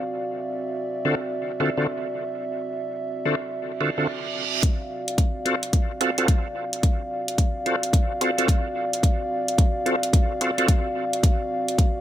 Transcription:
Already playing: analog synth pad C4 F#4 D5 F5
0.22 analog synth pad E5
1.05 tonewheel organ D3 C4 F4 F#4 A4
1.60 tonewheel organ D3 C4 F4 F#4 A4
1.77 tonewheel organ D3 C4 F4 F#4 A4
3.25 tonewheel organ D3 C4 F4 F#4 A4
3.53 reverse cymbal
3.80 tonewheel organ D3 C4 F4 F#4 A4
3.98 tonewheel organ D3 C4 F4 F#4 A4
4.63 analog synth pad C4 F#4 D5 F5, kick, closed hi-hat
5.08 closed hi-hat
5.18 kick, closed hi-hat
5.45 tonewheel organ C4 F4 F#4 A4, closed hi-hat
5.63 closed hi-hat
5.73 kick, closed hi-hat
6.01 tonewheel organ C4 F4 F#4 A4, closed hi-hat
6.18 tonewheel organ C4 F4 F#4 A4, closed hi-hat
6.28 kick, closed hi-hat
6.73 closed hi-hat
6.83 kick, closed hi-hat
7.28 closed hi-hat
7.38 kick, closed hi-hat
7.66 tonewheel organ C4 F4 F#4 A4, closed hi-hat
7.83 closed hi-hat
7.93 kick, closed hi-hat
8.21 tonewheel organ C4 F4 F#4 A4, closed hi-hat
8.38 tonewheel organ C4 F4 F#4 A4, closed hi-hat
8.48 kick, closed hi-hat
8.93 closed hi-hat
9.03 kick, closed hi-hat
9.48 closed hi-hat
9.58 kick, closed hi-hat
9.86 tonewheel organ C4 F4 F#4 A4, closed hi-hat
10.03 closed hi-hat
10.13 kick, closed hi-hat
10.41 tonewheel organ C4 F4 F#4 A4, closed hi-hat
10.58 tonewheel organ C4 F4 F#4 A4, closed hi-hat
10.68 kick, closed hi-hat
11.13 closed hi-hat
11.23 kick, closed hi-hat
11.68 closed hi-hat
11.78 kick, closed hi-hat

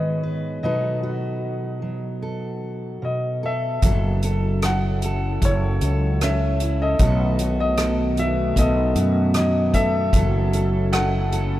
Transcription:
Already playing: steel-string acoustic guitar G#2 D#3 G#3 B3 F#4 B4, upright piano B4 D#5
0.23 steel-string acoustic guitar B4
0.63 steel-string acoustic guitar B2 F#3 D#4 F#4 A4, upright piano B4 D#5
1.03 steel-string acoustic guitar F#4
1.82 steel-string acoustic guitar F#3
2.22 steel-string acoustic guitar A4
3.02 steel-string acoustic guitar B2, upright piano D#5
3.43 steel-string acoustic guitar A4, upright piano A4 E5
3.82 fretless electric bass F#1, analog synth pad F#3 C#4 E4 A4, steel-string acoustic guitar F#3 A4, kick, closed hi-hat
4.22 steel-string acoustic guitar A4, closed hi-hat
4.62 steel-string acoustic guitar A4, upright piano F#5, cross-stick, closed hi-hat
5.02 steel-string acoustic guitar A4, closed hi-hat
5.42 fretless electric bass F#1, steel-string acoustic guitar E4, upright piano A4 C#5, kick, closed hi-hat
5.81 fretless electric bass C#2, steel-string acoustic guitar A4, closed hi-hat
6.21 steel-string acoustic guitar C#4, upright piano E5, cross-stick, closed hi-hat
6.60 steel-string acoustic guitar E4, closed hi-hat
6.82 upright piano A4 D#5
6.99 fretless electric bass B1, steel-string acoustic guitar B2 F#3 B3 F#4 A4, analog synth pad D#3 A3 B3, kick, closed hi-hat
7.39 steel-string acoustic guitar F#4, closed hi-hat
7.60 upright piano D#5
7.77 steel-string acoustic guitar A4, cross-stick, closed hi-hat
8.17 steel-string acoustic guitar F#4, upright piano E5, closed hi-hat
8.56 fretless electric bass B1, steel-string acoustic guitar B3, upright piano A4 D#5, kick, closed hi-hat
8.95 fretless electric bass F#2, steel-string acoustic guitar F#4, closed hi-hat
9.34 steel-string acoustic guitar F#3, upright piano D#5, cross-stick, closed hi-hat
9.74 steel-string acoustic guitar B3, upright piano A4 E5, kick, closed hi-hat
10.13 fretless electric bass F#1, analog synth pad F#3 C#4 E4 A4, steel-string acoustic guitar F#3 A4, kick, closed hi-hat
10.53 steel-string acoustic guitar A4, closed hi-hat
10.93 steel-string acoustic guitar A4, upright piano F#5, cross-stick, closed hi-hat
11.32 steel-string acoustic guitar A4, closed hi-hat

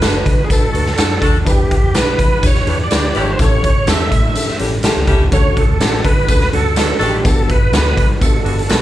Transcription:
Already playing: tonewheel organ B4
0.01 fingered electric bass F#1, reed electric piano D4 F#4 A4 B4, clean electric guitar D4 F#4 A4, snare, closed hi-hat, tambourine
0.26 fingered electric bass D3, tonewheel organ B4, kick, closed hi-hat
0.44 tonewheel organ G#4
0.49 reed electric piano D4 F#4 A4 B4, tonewheel organ A4, kick, closed hi-hat, tambourine
0.62 muted fingered electric bass stroke
0.73 fingered electric bass D2, saxophone section D4 F#4 A4, reed electric piano D4 F#4 A4 B4, closed hi-hat
0.86 snare
0.97 fingered electric bass F#2, reed electric piano D4 F#4 A4 D5, clean electric guitar D4 F#4 A4, saxophone section D4 F#4 A4, snare, closed hi-hat, tambourine
1.21 fingered electric bass D#2, saxophone section D4 F#4 A4, clean electric guitar D4 F#4 A4, kick, closed hi-hat
1.45 fingered electric bass E2, reed electric piano D4 E4 G4 B4, kick, closed hi-hat, tambourine
1.50 tonewheel organ G4
1.71 kick, closed hi-hat
1.83 fingered electric bass E2
1.93 fingered electric bass B1, reed electric piano D4 E4 G4 B4, clean electric guitar D4 G4 B4, snare, closed hi-hat, tambourine
1.99 tonewheel organ B4
2.19 fingered electric bass E3, kick, closed hi-hat
2.43 fingered electric bass E2, reed electric piano D4 E4 G4 B4, kick, closed hi-hat, tambourine
2.47 tonewheel organ C#5
2.55 snare
2.66 fingered electric bass E2, reed electric piano D4 E4 G4 B4, saxophone section D4 E4 G4, closed hi-hat
2.84 tonewheel organ D5
2.91 fingered electric bass D2, clean electric guitar D4 G4 B4, reed electric piano D4 E4 G4 B4, saxophone section D4 E4 G4, snare, closed hi-hat, tambourine
3.15 fingered electric bass G#1, saxophone section D4 E4 G4, tonewheel organ C#5, closed hi-hat
3.33 tonewheel organ C5
3.39 fingered electric bass A1, reed electric piano C#4 E4 G4 A4, tonewheel organ C#5, kick, closed hi-hat, tambourine
3.64 kick, closed hi-hat
3.76 fingered electric bass A1
3.87 fingered electric bass E2, clean electric guitar C#4 G4 A4, reed electric piano C#4 E4 G4 A4, tonewheel organ E5, snare, closed hi-hat, tambourine
4.12 fingered electric bass A2, kick, closed hi-hat
4.35 reed electric piano C#4 E4 G4 A4, closed hi-hat, tambourine
4.47 muted fingered electric bass stroke, snare
4.59 fingered electric bass A1, reed electric piano C#4 E4 G4 A4, saxophone section C#4 E4 G4, closed hi-hat
4.83 clean electric guitar C#4 G4 A4, saxophone section C#4 E4 G4, reed electric piano C#4 E4 G4 A4, snare, closed hi-hat, tambourine
4.96 fingered electric bass C#2
5.07 fingered electric bass C#2, clean electric guitar C#4 G4 A4, saxophone section C#4 E4 G4, kick, closed hi-hat
5.32 fingered electric bass D2, reed electric piano C#4 D4 F#4 A4, tonewheel organ C#5, kick, closed hi-hat, tambourine
5.57 tonewheel organ A4, kick, closed hi-hat
5.68 fingered electric bass D2
5.80 fingered electric bass A1, clean electric guitar C#4 F#4 A4, reed electric piano C#4 D4 F#4 A4, snare, closed hi-hat, tambourine
6.05 fingered electric bass D3, tonewheel organ B4, kick, closed hi-hat
6.28 fingered electric bass D2, reed electric piano C#4 D4 F#4 A4, kick, closed hi-hat, tambourine
6.41 snare
6.52 fingered electric bass D2, saxophone section F#3 D4 F#4, reed electric piano C#4 D4 F#4 A4, tonewheel organ A4, closed hi-hat
6.76 saxophone section F#3 D4 F#4, clean electric guitar C#4 F#4 A4, reed electric piano C#4 D4 F#4 B4, snare, closed hi-hat, tambourine
6.99 fingered electric bass A1, saxophone section D4 F#4 A4, tonewheel organ G4, closed hi-hat
7.24 fingered electric bass G1, reed electric piano B3 D4 F#4 G4, tonewheel organ A4, kick, closed hi-hat, tambourine
7.49 tonewheel organ B4, kick, closed hi-hat
7.61 fingered electric bass G1
7.73 fingered electric bass D2, reed electric piano B3 D4 F#4 A4, clean electric guitar D4 F#4 B4, snare, closed hi-hat, tambourine
7.97 fingered electric bass G2, tonewheel organ B4, kick, closed hi-hat
8.21 reed electric piano B3 D4 F#4 G4, tonewheel organ A4, kick, closed hi-hat, tambourine
8.34 muted fingered electric bass stroke
8.45 fingered electric bass G1, reed electric piano B3 D4 F#4 G4, saxophone section B3 D4 F#4, closed hi-hat
8.59 closed hi-hat
8.69 fingered electric bass B1, saxophone section B3 D4 F#4, reed electric piano B3 D4 F#4 G4, clean electric guitar D4 F#4 B4, snare, closed hi-hat, tambourine

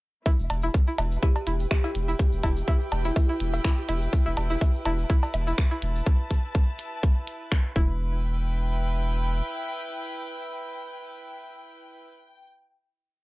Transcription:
0.26 synth pluck E4, string section E4, synth texture G4, kick, cabasa, low woodblock
0.39 sub bass E1, cabasa
0.50 sub bass E1, closed hi-hat, cowbell
0.62 synth pluck E4, cabasa
0.74 kick, cabasa
0.87 synth pluck E4, cabasa
0.96 sub bass E1, string section B4, closed hi-hat, cowbell, low woodblock
1.12 cabasa
1.23 synth pluck E4, kalimba G4, kick, cabasa
1.35 cowbell, cabasa
1.47 sub bass E1, synth pluck E4, closed hi-hat
1.60 cabasa
1.71 kalimba G4, finger snap, kick, cabasa, low woodblock
1.84 synth pluck E4, kalimba G4, string section G5, cowbell, cabasa
1.95 sub bass E1, closed hi-hat
2.08 synth pluck E4, cabasa
2.19 kick, cabasa
2.32 sub bass E1, cabasa
2.44 sub bass E1, synth pluck E4, kick, closed hi-hat, cowbell, low woodblock
2.56 cabasa
2.67 synth pluck E4, kick, cowbell, cabasa
2.81 cabasa
2.92 sub bass E1, closed hi-hat, cowbell
3.05 synth pluck E4, kalimba E4, cabasa
3.16 kick, cabasa, low woodblock
3.29 synth pluck E4, cabasa
3.40 sub bass E1, closed hi-hat
3.54 cowbell, cabasa
3.64 synth pluck E4, finger snap, kick, cabasa
3.78 cabasa
3.89 sub bass E1, synth pluck E4, closed hi-hat, low woodblock
4.01 cabasa
4.13 kick, cabasa
4.25 sub bass E1, synth pluck E4, cabasa
4.37 sub bass E1, closed hi-hat, cowbell
4.50 synth pluck E4, cabasa
4.61 kick, cabasa, low woodblock
4.74 cabasa
4.85 sub bass E1, synth pluck E4, closed hi-hat, cowbell
4.99 cabasa
5.09 synth pluck E4, kick, cabasa
5.23 cowbell, cabasa
5.34 sub bass E1, closed hi-hat, low woodblock
5.41 string section A5
5.47 synth pluck E4, cabasa
5.58 finger snap, kick, cabasa
5.71 synth pluck E4, cabasa
5.82 sub bass E1, closed hi-hat
5.95 cabasa
6.06 kick
6.31 kick, closed hi-hat
6.55 kick
6.79 closed hi-hat
7.03 kick
7.27 closed hi-hat
7.52 finger snap, kick
7.76 sub bass E1, synth pluck E4, string section E4, kick
7.84 string section B4
8.15 string section G5

